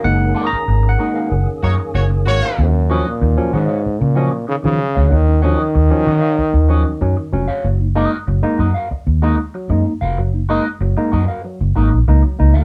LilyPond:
<<
  \new Staff \with { instrumentName = "Clean electric guitar" } { \time 4/4 \key ees \minor \tempo 4 = 95 r8 <ges' bes' ees''>16 r8. <ges' bes' ees''>16 <ges' bes' f''>16 r8 <ges' bes' ees''>16 r4 <ges' bes' f''>16 | r8 <ges' des'' ees''>16 r8. <ges' des'' ees''>16 <ges' des'' f''>16 r8 <ges' des'' ees''>16 r4 <ges' des'' f''>16 | r8 <ges' des'' ees''>16 r8. <ges' des'' ees''>16 <ges' des'' f''>16 r8 <ges' des'' ees''>16 r4 <ges' des'' f''>16 | r8 <ges' bes' ees''>16 r8. <ges' bes' ees''>16 <ges' bes' f''>16 r8 <ges' bes' ees''>16 r4 <ges' bes' f''>16 |
r8 <ges' bes' ees''>16 r8. <ges' bes' ees''>16 <ges' bes' f''>16 r8 <ges' bes' ees''>16 r4 <ges' bes' f''>16 | }
  \new Staff \with { instrumentName = "Horn section" } { \time 4/4 \key ees \minor r2 r8 <bes ges' des''>16 r16 <bes ges' des''>16 r16 <bes ges' des''>8~ | <bes ges' des''>16 r2. r8. | r1 | r1 |
r1 | }
  \new Staff \with { instrumentName = "Tonewheel organ" } { \time 4/4 \key ees \minor <ees bes des' aes'>1 | r1 | r1 | r1 |
r1 | }
  \new Staff \with { instrumentName = "Tine electric piano" } { \time 4/4 \key ees \minor << { \tuplet 3/2 { ges''4 bes''8~ bes''8 ges''4~ } ges''8 r4. | r16 <ges des'>16 <f ges des'>16 r8 <f ges des'>16 <ges des'>16 r8. <f ges des'>16 r8 <f ges des'>16 <ges des'>16 r16 | r16 <ges des'>16 <f ges des'>16 r8 <f ges des'>16 <ges des'>16 r8. <f ges des'>16 <ges des'>16 <ges des'>16 r16 <ges des'>16 r16 | r16 <bes ees'>16 <aes bes ees'>16 r8 <aes bes ees'>16 <bes ees'>16 r8. <aes bes ees'>16 r8 <aes bes ees'>16 <bes ees'>16 r16 |
r16 <bes ees'>16 <aes bes ees'>16 r8 <aes bes ees'>16 <bes ees'>16 r8. <aes bes ees'>16 <bes ees'>16 <bes ees'>16 r16 <bes ees'>16 r16 | } \\ { <aes bes ees'>8. r8. <aes bes ees'>8 r2 | ees16 r8. ees16 r4. r16 ees16 r8. | ees16 r8. ees16 r8. ees16 r4 ees16 r8 | ges16 r8. ges16 r4. r16 ges16 r8. |
ges16 r8. ges16 r8. ges16 r4 ges16 r8 | } >> }
  \new Staff \with { instrumentName = "Trombone" } { \clef bass \time 4/4 \key ees \minor r1 | ges,8. bes,8. aes,8. bes,8. des16 des8. | ees8 ees2. r8 | r1 |
r1 | }
  \new Staff \with { instrumentName = "Fingered electric bass" } { \clef bass \time 4/4 \key ees \minor ges,,8 r8 aes,,8 r8 ges,,16 r16 ges,16 r16 ges,,8 aes,,16 r16 | ees,8. r16 ees,16 r16 ees16 r8 des8 r8 ees16 r16 d,16 | ees,8. r16 ees,16 r16 ees16 r8 ees,8 r16 ges,16 r16 f,,16 r16 | ges,,8. r16 ges,,16 r16 ges,16 r8 ees,8 r8 ges,16 r16 f,,16 |
ges,,8. r16 ges,,16 r16 ges,16 r8 ges,,16 aes,,16 bes,,16 des,16 r16 des,16 d,16 | }
>>